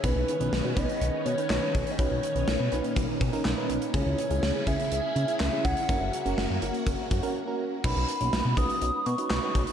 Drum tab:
CC |----------------|----------------|----------------|----------------|
HH |x-xx--xxx-xx--xx|x-xx--xxx-xx--xx|x-xx--xxx-xx--xx|x-xx--xxx-xx----|
CP |------------x---|------------x---|------------x---|----------------|
SD |----o-------o---|----o-------o---|----o-------o---|----o-----------|
BD |o-----o-------o-|o-------o-o-----|o-----o-------o-|o-------o-o-----|

CC |x---------------|
HH |--xx--xxx-xx--xx|
CP |------------x---|
SD |----o-------o---|
BD |o-----o-------o-|